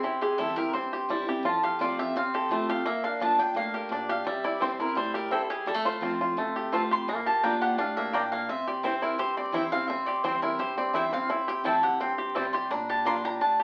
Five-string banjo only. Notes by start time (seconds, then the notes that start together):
Already playing: C4
0.04 E4
0.22 G4
0.39 E4
0.58 G4
0.75 C4
0.93 G4
1.10 G3
1.29 G4
1.45 F4
1.64 G4
1.81 F4
1.99 G4
2.17 C4
2.35 G4
2.52 A3
2.70 G4
2.86 A#3
3.04 D4
3.21 D4
3.39 D4
3.56 A#3
3.74 G4
3.92 D4
4.09 G4
4.27 G3
4.45 E4
4.62 C4
4.80 E4
4.97 G3
5.14 G4
5.31 E4
5.50 G4
5.67 G3
5.74 A3
5.85 F4
6.03 C4
6.21 F4
6.38 A3
6.56 G4
6.73 F4
6.91 G4
7.09 G#3
7.15 A#3
7.26 G4
7.44 D4
7.62 G4
7.79 D4
7.97 A#3
8.15 D4
8.33 A#3
8.49 C4
8.67 G4
8.85 C4
9.02 E4
9.19 G4
9.37 C4
9.54 E4
9.73 C4
9.90 C4
10.08 G4
10.25 C4
10.43 E4
10.60 G4
10.78 C4
10.94 E4
11.13 C4
11.30 E4
11.48 G4
11.65 E4
11.83 G4
12.00 C4
12.18 G4
12.36 G3
12.54 G4
12.71 D4
12.90 G4
13.06 D4
13.25 G4
13.41 D4
13.60 G4